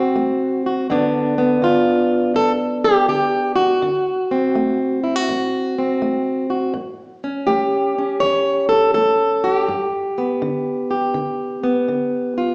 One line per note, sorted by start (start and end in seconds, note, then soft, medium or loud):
0.00 0.86 C4 soft
0.00 0.62 F#4 medium
0.16 0.84 A3 medium
0.66 0.87 F#4 soft
0.90 1.58 G2 medium
0.90 1.61 D3 medium
0.90 1.37 B3 medium
0.90 3.81 D4 medium
1.38 3.80 B3 medium
1.62 2.30 D3 medium
1.62 2.35 F4 medium
2.34 3.03 G2 medium
2.34 2.52 A4 loud
2.84 3.08 G4 medium
3.08 3.77 D3 medium
3.08 3.55 G4 medium
3.56 5.03 F#4 medium
3.82 4.51 D3 medium
4.31 5.77 C4 soft
4.55 5.24 A3 medium
5.04 5.16 E4 soft
5.16 6.49 F#4 soft
5.29 5.97 A2 medium
5.79 6.73 C4 soft
6.02 6.70 A3 medium
6.50 6.72 F#4 soft
6.74 7.43 A2 medium
7.24 7.97 C#4 soft
7.47 8.16 A3 medium
7.47 8.94 G4 medium
7.98 9.66 C#4 soft
8.20 8.91 E2 medium
8.20 8.68 C#5 loud
8.69 8.93 A4 medium
8.94 9.63 A3 medium
8.94 9.68 A4 medium
9.44 9.55 F#4 medium
9.55 10.89 G4 medium
9.68 10.37 G2 medium
10.18 11.62 B3 soft
10.42 11.10 D3 medium
10.91 12.55 G4 soft
11.14 11.83 D3 medium
11.63 12.55 B3 soft
11.88 12.55 D3 medium
12.38 12.55 F4 medium